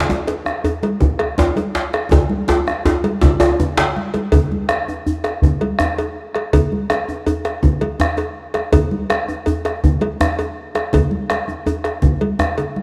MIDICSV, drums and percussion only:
0, 0, Header, 1, 4, 480
1, 0, Start_track
1, 0, Tempo, 367422
1, 2763, Time_signature, 12, 3, 24, 8
1, 16756, End_track
2, 0, Start_track
2, 0, Title_t, "Bombo"
2, 605, Note_on_c, 9, 37, 88
2, 736, Note_off_c, 9, 37, 0
2, 1328, Note_on_c, 9, 37, 36
2, 1328, Note_on_c, 9, 43, 104
2, 1458, Note_off_c, 9, 37, 0
2, 1458, Note_off_c, 9, 43, 0
2, 1557, Note_on_c, 9, 37, 80
2, 1687, Note_off_c, 9, 37, 0
2, 2532, Note_on_c, 9, 37, 82
2, 2663, Note_off_c, 9, 37, 0
2, 2771, Note_on_c, 9, 43, 102
2, 2901, Note_off_c, 9, 43, 0
2, 3496, Note_on_c, 9, 37, 90
2, 3627, Note_off_c, 9, 37, 0
2, 4218, Note_on_c, 9, 43, 105
2, 4349, Note_off_c, 9, 43, 0
2, 4455, Note_on_c, 9, 37, 81
2, 4586, Note_off_c, 9, 37, 0
2, 5176, Note_on_c, 9, 37, 34
2, 5307, Note_off_c, 9, 37, 0
2, 5645, Note_on_c, 9, 43, 99
2, 5775, Note_off_c, 9, 43, 0
2, 6125, Note_on_c, 9, 37, 99
2, 6255, Note_off_c, 9, 37, 0
2, 6850, Note_on_c, 9, 37, 72
2, 6981, Note_off_c, 9, 37, 0
2, 7081, Note_on_c, 9, 43, 104
2, 7211, Note_off_c, 9, 43, 0
2, 7327, Note_on_c, 9, 37, 32
2, 7458, Note_off_c, 9, 37, 0
2, 7560, Note_on_c, 9, 37, 97
2, 7691, Note_off_c, 9, 37, 0
2, 8289, Note_on_c, 9, 37, 70
2, 8420, Note_off_c, 9, 37, 0
2, 8532, Note_on_c, 9, 43, 89
2, 8663, Note_off_c, 9, 43, 0
2, 9012, Note_on_c, 9, 37, 86
2, 9143, Note_off_c, 9, 37, 0
2, 9734, Note_on_c, 9, 37, 68
2, 9865, Note_off_c, 9, 37, 0
2, 9979, Note_on_c, 9, 43, 97
2, 10109, Note_off_c, 9, 43, 0
2, 10222, Note_on_c, 9, 37, 32
2, 10352, Note_off_c, 9, 37, 0
2, 10468, Note_on_c, 9, 37, 97
2, 10598, Note_off_c, 9, 37, 0
2, 11170, Note_on_c, 9, 37, 70
2, 11301, Note_off_c, 9, 37, 0
2, 11415, Note_on_c, 9, 43, 90
2, 11546, Note_off_c, 9, 43, 0
2, 11892, Note_on_c, 9, 37, 93
2, 12022, Note_off_c, 9, 37, 0
2, 12620, Note_on_c, 9, 37, 69
2, 12750, Note_off_c, 9, 37, 0
2, 12852, Note_on_c, 9, 43, 100
2, 12982, Note_off_c, 9, 43, 0
2, 13088, Note_on_c, 9, 37, 29
2, 13219, Note_off_c, 9, 37, 0
2, 13338, Note_on_c, 9, 37, 91
2, 13469, Note_off_c, 9, 37, 0
2, 14050, Note_on_c, 9, 37, 80
2, 14181, Note_off_c, 9, 37, 0
2, 14288, Note_on_c, 9, 43, 93
2, 14418, Note_off_c, 9, 43, 0
2, 14759, Note_on_c, 9, 37, 96
2, 14889, Note_off_c, 9, 37, 0
2, 14997, Note_on_c, 9, 37, 31
2, 15127, Note_off_c, 9, 37, 0
2, 15471, Note_on_c, 9, 37, 72
2, 15602, Note_off_c, 9, 37, 0
2, 15720, Note_on_c, 9, 43, 101
2, 15851, Note_off_c, 9, 43, 0
2, 16196, Note_on_c, 9, 37, 94
2, 16327, Note_off_c, 9, 37, 0
2, 16435, Note_on_c, 9, 37, 34
2, 16565, Note_off_c, 9, 37, 0
2, 16682, Note_on_c, 9, 37, 33
2, 16756, Note_off_c, 9, 37, 0
2, 16756, End_track
3, 0, Start_track
3, 0, Title_t, "Djembe"
3, 4, Note_on_c, 9, 62, 84
3, 129, Note_on_c, 9, 63, 83
3, 134, Note_off_c, 9, 62, 0
3, 260, Note_off_c, 9, 63, 0
3, 365, Note_on_c, 9, 62, 80
3, 495, Note_off_c, 9, 62, 0
3, 597, Note_on_c, 9, 63, 58
3, 728, Note_off_c, 9, 63, 0
3, 839, Note_on_c, 9, 64, 74
3, 970, Note_off_c, 9, 64, 0
3, 1087, Note_on_c, 9, 62, 63
3, 1218, Note_off_c, 9, 62, 0
3, 1322, Note_on_c, 9, 63, 74
3, 1452, Note_off_c, 9, 63, 0
3, 1802, Note_on_c, 9, 62, 80
3, 1802, Note_on_c, 9, 64, 76
3, 1814, Note_on_c, 9, 63, 102
3, 1932, Note_off_c, 9, 62, 0
3, 1932, Note_off_c, 9, 64, 0
3, 1945, Note_off_c, 9, 63, 0
3, 2050, Note_on_c, 9, 63, 66
3, 2181, Note_off_c, 9, 63, 0
3, 2285, Note_on_c, 9, 62, 74
3, 2415, Note_off_c, 9, 62, 0
3, 2527, Note_on_c, 9, 62, 59
3, 2657, Note_off_c, 9, 62, 0
3, 2760, Note_on_c, 9, 63, 74
3, 2760, Note_on_c, 9, 64, 78
3, 2768, Note_off_c, 9, 63, 0
3, 2768, Note_on_c, 9, 63, 97
3, 2891, Note_off_c, 9, 64, 0
3, 2898, Note_off_c, 9, 63, 0
3, 3239, Note_on_c, 9, 62, 80
3, 3247, Note_on_c, 9, 63, 111
3, 3370, Note_off_c, 9, 62, 0
3, 3378, Note_off_c, 9, 63, 0
3, 3486, Note_on_c, 9, 63, 63
3, 3617, Note_off_c, 9, 63, 0
3, 3729, Note_on_c, 9, 64, 76
3, 3730, Note_on_c, 9, 63, 102
3, 3860, Note_off_c, 9, 63, 0
3, 3860, Note_off_c, 9, 64, 0
3, 3973, Note_on_c, 9, 62, 59
3, 4103, Note_off_c, 9, 62, 0
3, 4199, Note_on_c, 9, 63, 103
3, 4210, Note_off_c, 9, 63, 0
3, 4210, Note_on_c, 9, 62, 23
3, 4210, Note_on_c, 9, 63, 74
3, 4341, Note_off_c, 9, 62, 0
3, 4341, Note_off_c, 9, 63, 0
3, 4439, Note_on_c, 9, 63, 107
3, 4452, Note_on_c, 9, 62, 24
3, 4570, Note_off_c, 9, 63, 0
3, 4583, Note_off_c, 9, 62, 0
3, 4698, Note_on_c, 9, 62, 76
3, 4698, Note_on_c, 9, 64, 75
3, 4829, Note_off_c, 9, 62, 0
3, 4829, Note_off_c, 9, 64, 0
3, 4928, Note_on_c, 9, 63, 61
3, 4931, Note_on_c, 9, 62, 102
3, 5059, Note_off_c, 9, 63, 0
3, 5061, Note_off_c, 9, 62, 0
3, 5411, Note_on_c, 9, 62, 60
3, 5541, Note_off_c, 9, 62, 0
3, 5650, Note_on_c, 9, 63, 81
3, 5650, Note_on_c, 9, 64, 83
3, 5781, Note_off_c, 9, 63, 0
3, 5781, Note_off_c, 9, 64, 0
3, 5895, Note_on_c, 9, 62, 27
3, 6026, Note_off_c, 9, 62, 0
3, 6125, Note_on_c, 9, 62, 81
3, 6255, Note_off_c, 9, 62, 0
3, 6380, Note_on_c, 9, 63, 62
3, 6511, Note_off_c, 9, 63, 0
3, 6617, Note_on_c, 9, 64, 80
3, 6747, Note_off_c, 9, 64, 0
3, 6854, Note_on_c, 9, 62, 64
3, 6985, Note_off_c, 9, 62, 0
3, 7096, Note_on_c, 9, 63, 83
3, 7226, Note_off_c, 9, 63, 0
3, 7574, Note_on_c, 9, 62, 83
3, 7574, Note_on_c, 9, 64, 76
3, 7705, Note_off_c, 9, 62, 0
3, 7705, Note_off_c, 9, 64, 0
3, 7816, Note_on_c, 9, 63, 65
3, 7947, Note_off_c, 9, 63, 0
3, 8540, Note_on_c, 9, 63, 74
3, 8540, Note_on_c, 9, 64, 67
3, 8671, Note_off_c, 9, 63, 0
3, 8671, Note_off_c, 9, 64, 0
3, 8778, Note_on_c, 9, 62, 24
3, 8908, Note_off_c, 9, 62, 0
3, 9016, Note_on_c, 9, 62, 80
3, 9147, Note_off_c, 9, 62, 0
3, 9256, Note_on_c, 9, 63, 62
3, 9387, Note_off_c, 9, 63, 0
3, 9492, Note_on_c, 9, 64, 74
3, 9623, Note_off_c, 9, 64, 0
3, 9731, Note_on_c, 9, 62, 60
3, 9862, Note_off_c, 9, 62, 0
3, 9966, Note_on_c, 9, 63, 79
3, 10096, Note_off_c, 9, 63, 0
3, 10446, Note_on_c, 9, 62, 85
3, 10446, Note_on_c, 9, 64, 80
3, 10577, Note_off_c, 9, 62, 0
3, 10577, Note_off_c, 9, 64, 0
3, 10674, Note_on_c, 9, 63, 68
3, 10805, Note_off_c, 9, 63, 0
3, 11158, Note_on_c, 9, 62, 66
3, 11289, Note_off_c, 9, 62, 0
3, 11397, Note_on_c, 9, 63, 85
3, 11397, Note_on_c, 9, 64, 83
3, 11528, Note_off_c, 9, 63, 0
3, 11528, Note_off_c, 9, 64, 0
3, 11655, Note_on_c, 9, 62, 28
3, 11786, Note_off_c, 9, 62, 0
3, 11891, Note_on_c, 9, 62, 88
3, 12021, Note_off_c, 9, 62, 0
3, 12130, Note_on_c, 9, 63, 64
3, 12260, Note_off_c, 9, 63, 0
3, 12368, Note_on_c, 9, 64, 83
3, 12499, Note_off_c, 9, 64, 0
3, 12610, Note_on_c, 9, 62, 68
3, 12740, Note_off_c, 9, 62, 0
3, 12850, Note_on_c, 9, 63, 79
3, 12981, Note_off_c, 9, 63, 0
3, 13334, Note_on_c, 9, 62, 85
3, 13334, Note_on_c, 9, 64, 86
3, 13465, Note_off_c, 9, 62, 0
3, 13465, Note_off_c, 9, 64, 0
3, 13575, Note_on_c, 9, 63, 67
3, 13706, Note_off_c, 9, 63, 0
3, 14045, Note_on_c, 9, 62, 61
3, 14176, Note_off_c, 9, 62, 0
3, 14281, Note_on_c, 9, 63, 75
3, 14281, Note_on_c, 9, 64, 71
3, 14412, Note_off_c, 9, 63, 0
3, 14412, Note_off_c, 9, 64, 0
3, 14766, Note_on_c, 9, 62, 80
3, 14896, Note_off_c, 9, 62, 0
3, 15004, Note_on_c, 9, 62, 25
3, 15004, Note_on_c, 9, 63, 60
3, 15134, Note_off_c, 9, 62, 0
3, 15134, Note_off_c, 9, 63, 0
3, 15239, Note_on_c, 9, 64, 75
3, 15369, Note_off_c, 9, 64, 0
3, 15481, Note_on_c, 9, 62, 62
3, 15611, Note_off_c, 9, 62, 0
3, 15717, Note_on_c, 9, 62, 25
3, 15717, Note_on_c, 9, 63, 77
3, 15848, Note_off_c, 9, 62, 0
3, 15848, Note_off_c, 9, 63, 0
3, 15964, Note_on_c, 9, 62, 25
3, 16095, Note_off_c, 9, 62, 0
3, 16190, Note_on_c, 9, 62, 73
3, 16190, Note_on_c, 9, 64, 79
3, 16320, Note_off_c, 9, 62, 0
3, 16320, Note_off_c, 9, 64, 0
3, 16438, Note_on_c, 9, 62, 23
3, 16438, Note_on_c, 9, 63, 62
3, 16568, Note_off_c, 9, 62, 0
3, 16568, Note_off_c, 9, 63, 0
3, 16756, End_track
4, 0, Start_track
4, 0, Title_t, "Drums"
4, 123, Note_on_c, 9, 63, 55
4, 253, Note_off_c, 9, 63, 0
4, 359, Note_on_c, 9, 56, 54
4, 490, Note_off_c, 9, 56, 0
4, 844, Note_on_c, 9, 56, 56
4, 974, Note_off_c, 9, 56, 0
4, 1082, Note_on_c, 9, 63, 60
4, 1088, Note_on_c, 9, 56, 55
4, 1212, Note_off_c, 9, 63, 0
4, 1219, Note_off_c, 9, 56, 0
4, 1313, Note_on_c, 9, 63, 24
4, 1313, Note_on_c, 9, 64, 73
4, 1444, Note_off_c, 9, 63, 0
4, 1444, Note_off_c, 9, 64, 0
4, 1558, Note_on_c, 9, 63, 23
4, 1561, Note_on_c, 9, 56, 60
4, 1688, Note_off_c, 9, 63, 0
4, 1692, Note_off_c, 9, 56, 0
4, 2039, Note_on_c, 9, 63, 54
4, 2047, Note_on_c, 9, 56, 52
4, 2170, Note_off_c, 9, 63, 0
4, 2177, Note_off_c, 9, 56, 0
4, 2276, Note_on_c, 9, 63, 25
4, 2407, Note_off_c, 9, 63, 0
4, 2532, Note_on_c, 9, 56, 56
4, 2663, Note_off_c, 9, 56, 0
4, 2758, Note_on_c, 9, 64, 84
4, 2768, Note_on_c, 9, 56, 73
4, 2889, Note_off_c, 9, 64, 0
4, 2899, Note_off_c, 9, 56, 0
4, 2999, Note_on_c, 9, 63, 64
4, 3129, Note_off_c, 9, 63, 0
4, 3258, Note_on_c, 9, 56, 51
4, 3388, Note_off_c, 9, 56, 0
4, 3494, Note_on_c, 9, 63, 25
4, 3624, Note_off_c, 9, 63, 0
4, 3732, Note_on_c, 9, 63, 27
4, 3734, Note_on_c, 9, 56, 53
4, 3863, Note_off_c, 9, 63, 0
4, 3865, Note_off_c, 9, 56, 0
4, 3971, Note_on_c, 9, 63, 72
4, 3972, Note_on_c, 9, 56, 52
4, 4101, Note_off_c, 9, 63, 0
4, 4103, Note_off_c, 9, 56, 0
4, 4214, Note_on_c, 9, 64, 85
4, 4345, Note_off_c, 9, 64, 0
4, 4447, Note_on_c, 9, 56, 55
4, 4452, Note_on_c, 9, 64, 46
4, 4578, Note_off_c, 9, 56, 0
4, 4582, Note_off_c, 9, 64, 0
4, 4704, Note_on_c, 9, 64, 46
4, 4835, Note_off_c, 9, 64, 0
4, 4934, Note_on_c, 9, 56, 48
4, 4947, Note_on_c, 9, 64, 52
4, 5064, Note_off_c, 9, 56, 0
4, 5078, Note_off_c, 9, 64, 0
4, 5179, Note_on_c, 9, 63, 54
4, 5310, Note_off_c, 9, 63, 0
4, 5405, Note_on_c, 9, 56, 48
4, 5413, Note_on_c, 9, 63, 55
4, 5535, Note_off_c, 9, 56, 0
4, 5544, Note_off_c, 9, 63, 0
4, 5643, Note_on_c, 9, 56, 74
4, 5662, Note_on_c, 9, 64, 73
4, 5774, Note_off_c, 9, 56, 0
4, 5793, Note_off_c, 9, 64, 0
4, 5901, Note_on_c, 9, 63, 57
4, 6032, Note_off_c, 9, 63, 0
4, 6122, Note_on_c, 9, 56, 50
4, 6148, Note_on_c, 9, 63, 23
4, 6253, Note_off_c, 9, 56, 0
4, 6278, Note_off_c, 9, 63, 0
4, 6845, Note_on_c, 9, 56, 53
4, 6976, Note_off_c, 9, 56, 0
4, 7102, Note_on_c, 9, 63, 22
4, 7102, Note_on_c, 9, 64, 69
4, 7233, Note_off_c, 9, 63, 0
4, 7233, Note_off_c, 9, 64, 0
4, 7331, Note_on_c, 9, 56, 55
4, 7339, Note_on_c, 9, 63, 59
4, 7462, Note_off_c, 9, 56, 0
4, 7470, Note_off_c, 9, 63, 0
4, 7819, Note_on_c, 9, 56, 56
4, 7950, Note_off_c, 9, 56, 0
4, 8302, Note_on_c, 9, 56, 54
4, 8305, Note_on_c, 9, 63, 19
4, 8433, Note_off_c, 9, 56, 0
4, 8436, Note_off_c, 9, 63, 0
4, 8534, Note_on_c, 9, 56, 77
4, 8535, Note_on_c, 9, 64, 73
4, 8665, Note_off_c, 9, 56, 0
4, 8666, Note_off_c, 9, 64, 0
4, 8781, Note_on_c, 9, 63, 52
4, 8911, Note_off_c, 9, 63, 0
4, 9016, Note_on_c, 9, 63, 23
4, 9017, Note_on_c, 9, 56, 55
4, 9146, Note_off_c, 9, 63, 0
4, 9147, Note_off_c, 9, 56, 0
4, 9491, Note_on_c, 9, 56, 57
4, 9621, Note_off_c, 9, 56, 0
4, 9732, Note_on_c, 9, 56, 55
4, 9863, Note_off_c, 9, 56, 0
4, 9963, Note_on_c, 9, 63, 24
4, 9963, Note_on_c, 9, 64, 78
4, 10094, Note_off_c, 9, 63, 0
4, 10094, Note_off_c, 9, 64, 0
4, 10205, Note_on_c, 9, 56, 57
4, 10211, Note_on_c, 9, 63, 62
4, 10336, Note_off_c, 9, 56, 0
4, 10342, Note_off_c, 9, 63, 0
4, 10445, Note_on_c, 9, 63, 23
4, 10575, Note_off_c, 9, 63, 0
4, 10684, Note_on_c, 9, 56, 55
4, 10815, Note_off_c, 9, 56, 0
4, 11157, Note_on_c, 9, 56, 55
4, 11167, Note_on_c, 9, 63, 22
4, 11287, Note_off_c, 9, 56, 0
4, 11297, Note_off_c, 9, 63, 0
4, 11400, Note_on_c, 9, 56, 79
4, 11404, Note_on_c, 9, 64, 84
4, 11530, Note_off_c, 9, 56, 0
4, 11534, Note_off_c, 9, 64, 0
4, 11644, Note_on_c, 9, 63, 64
4, 11775, Note_off_c, 9, 63, 0
4, 11885, Note_on_c, 9, 56, 56
4, 11891, Note_on_c, 9, 63, 27
4, 12015, Note_off_c, 9, 56, 0
4, 12021, Note_off_c, 9, 63, 0
4, 12358, Note_on_c, 9, 56, 55
4, 12489, Note_off_c, 9, 56, 0
4, 12606, Note_on_c, 9, 56, 52
4, 12737, Note_off_c, 9, 56, 0
4, 12852, Note_on_c, 9, 63, 26
4, 12852, Note_on_c, 9, 64, 81
4, 12982, Note_off_c, 9, 63, 0
4, 12982, Note_off_c, 9, 64, 0
4, 13080, Note_on_c, 9, 63, 65
4, 13085, Note_on_c, 9, 56, 57
4, 13210, Note_off_c, 9, 63, 0
4, 13215, Note_off_c, 9, 56, 0
4, 13321, Note_on_c, 9, 63, 24
4, 13452, Note_off_c, 9, 63, 0
4, 13570, Note_on_c, 9, 56, 53
4, 13700, Note_off_c, 9, 56, 0
4, 14039, Note_on_c, 9, 63, 24
4, 14048, Note_on_c, 9, 56, 50
4, 14170, Note_off_c, 9, 63, 0
4, 14178, Note_off_c, 9, 56, 0
4, 14278, Note_on_c, 9, 63, 28
4, 14278, Note_on_c, 9, 64, 86
4, 14291, Note_on_c, 9, 56, 72
4, 14408, Note_off_c, 9, 63, 0
4, 14408, Note_off_c, 9, 64, 0
4, 14422, Note_off_c, 9, 56, 0
4, 14515, Note_on_c, 9, 63, 61
4, 14646, Note_off_c, 9, 63, 0
4, 14770, Note_on_c, 9, 56, 54
4, 14901, Note_off_c, 9, 56, 0
4, 14995, Note_on_c, 9, 63, 26
4, 15126, Note_off_c, 9, 63, 0
4, 15232, Note_on_c, 9, 63, 28
4, 15242, Note_on_c, 9, 56, 52
4, 15363, Note_off_c, 9, 63, 0
4, 15373, Note_off_c, 9, 56, 0
4, 15477, Note_on_c, 9, 56, 53
4, 15608, Note_off_c, 9, 56, 0
4, 15706, Note_on_c, 9, 63, 27
4, 15706, Note_on_c, 9, 64, 86
4, 15836, Note_off_c, 9, 63, 0
4, 15836, Note_off_c, 9, 64, 0
4, 15953, Note_on_c, 9, 56, 52
4, 15957, Note_on_c, 9, 63, 66
4, 16084, Note_off_c, 9, 56, 0
4, 16088, Note_off_c, 9, 63, 0
4, 16207, Note_on_c, 9, 63, 25
4, 16337, Note_off_c, 9, 63, 0
4, 16430, Note_on_c, 9, 56, 54
4, 16433, Note_on_c, 9, 64, 44
4, 16561, Note_off_c, 9, 56, 0
4, 16564, Note_off_c, 9, 64, 0
4, 16674, Note_on_c, 9, 63, 52
4, 16756, Note_off_c, 9, 63, 0
4, 16756, End_track
0, 0, End_of_file